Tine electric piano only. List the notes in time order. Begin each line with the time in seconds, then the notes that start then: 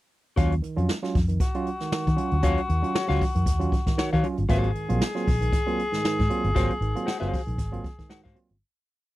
0.37 F#3 C#4 F4
0.62 D#3
0.76 F#3 C#4 F4
1.02 F#3 C#4 F4
1.28 D#3
1.55 F#3 C#4 F4
1.81 D#3
1.91 D#3
2.16 F#3 C#4 F4
2.31 C#4 F4
2.43 F#3 C#4 F4
2.68 D#3
2.82 F#3 C#4 F4
3.08 F#3 C#4 F4
3.34 D#3
3.59 F#3 C#4 F4
3.86 D#3
3.97 D#3
4.23 F#3 C#4 F4
4.38 C#4 F4
4.49 F#3 A#3 C4 F4
4.75 G#2 D#3
4.89 F#3 A#3 C4 F4
5.15 F#3 A#3 C4 F4
5.41 G#2 D#3
5.67 F#3 A#3 C4 F4
5.93 G#2 D#3
6.05 G#2 D#3
6.30 F#3 A#3 C4 F4
6.44 C4 F4
6.55 F#3 A#3 C4 F4
6.81 G#2 D#3
6.95 F#3 A#3 C4 F4
7.21 F#3 A#3 C4 F4
7.47 G#2 D#3
7.72 F#3 A#3 C4 F4
7.98 G#2 D#3
8.09 G#2 D#3
8.35 F#3 A#3 C4 F4
8.50 C4 F4